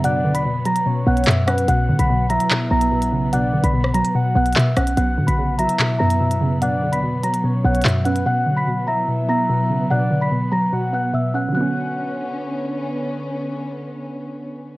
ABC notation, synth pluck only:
X:1
M:4/4
L:1/8
Q:1/4=146
K:Bm
V:1 name="Synth pluck" clef=bass
[B,,C,B,] D, B,, F, B,, B, B,, C | B,, D, B,, F, B,, B, B,, C, | B,, D, B,, F, B,, B, B,, C | B, D, C, F, B,, B, B,, C, |
B,, D, B,, F, B,, B, B,, C | B,, D, B,, F, B,, B, B,, C, | B,, D, B,, F, B,, B, B,, C | [D,F,B,C]8- |
[D,F,B,C]8 |]